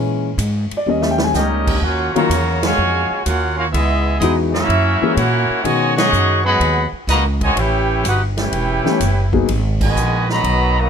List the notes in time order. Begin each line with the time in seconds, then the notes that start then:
Already playing: A#2 E3 G#3 C#4
0.38 G#2, hi-hat pedal, ride
0.71 muted upright bass stroke, ride
0.77 D5
0.86 D#2 G3 A#3 C#4 D#5
1.01 E5, snare
1.11 G5
1.18 snare
1.24 G#5
1.34 C#2 G3 A#3 C#4 D#4 G4 A#4 D#5 G5, snare, hi-hat pedal
1.67 kick, crash
1.82 D#2 A#3 C#4 F4 F#4 A#4 F#5
2.14 C#3 D#3 F#3 A#3 C#4 F4 F#4 C#5 F5 A#5, muted upright bass stroke, ride
2.29 E2, hi-hat pedal, ride
2.62 A#2 C#3 G#3 F#4 C#5 F5 G#5, snare, ride
2.78 F2
3.11 muted upright bass stroke
3.24 D#2 A#3 C#4 F4 F#4 A#4 F#5, hi-hat pedal, ride
3.57 A#3 C#4 F4 F#4 A#4 F5
3.71 C#2 G#3 B3 E4 G#4 D#5 E5, ride
4.19 E2 E3 G#3 B3 D#4 E4 G#4 D#5, hi-hat pedal, ride
4.23 F#4
4.52 A#3 C#4 E4 F#4 A#4 E5, snare
4.69 F#2, ride
5.02 E3 G#3 A#3 C#4 G#4, muted upright bass stroke
5.15 A#2 A#3 C#4 E4 F#4 A#4 C#5 F#5, hi-hat pedal, ride
5.50 muted upright bass stroke
5.63 G#2 B2 D#3 G#3 B3 C#4 F#4 C#5 D#5 G#5, ride
5.96 F#3 G#3 C#4 G#4 D#5 F#5 C#6, snare, ride
6.13 F#2, hi-hat pedal
6.44 F#3 G#3 B3 G#4 D#5 F#5 B5
6.60 D#2, ride
6.93 muted upright bass stroke
7.07 C#2 A#3 F#4 B4 D#5 A#5, snare, hi-hat pedal, ride
7.41 G#2 D#3 G#3 F#4 C#5 D#5 G#5, kick, ride
7.55 A1 C#4 E4 G4 C#5, ride
7.60 E4 B4 G5
8.04 G1 F#4, hi-hat pedal, ride
8.08 D#4 G4 B4 F#5
8.37 C#4 E4 G4 B4 C#5, snare, ride
8.41 G5
8.52 E1, ride
8.84 E3 A3 B3 C#4 G4, snare
9.00 F#1, hi-hat pedal, ride
9.33 F#3 A#3 B3 D#4 G#4, kick
9.48 G#1, ride
9.81 B2 D#3 G#3 F#4 B4 D#5 G#5, kick, crash
9.96 A#1, hi-hat pedal
10.29 D#3 F#3 B3 F#4 D#5 A#5 B5, snare
10.44 B1, ride
10.79 D#3 F#3 A#3 F#4 B4 D#5 A#5